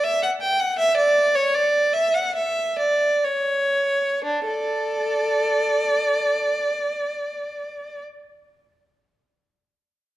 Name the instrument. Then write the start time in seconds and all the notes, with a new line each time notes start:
violin
0.04 E5
0.23 F#5
0.41 G5
0.60 F#5
0.78 E5
0.96 D5
1.35 C#5
1.55 D5
1.94 E5
2.14 F#5
2.35 E5
2.78 D5
3.25 C#5
4.24 D4
4.46 A4 D5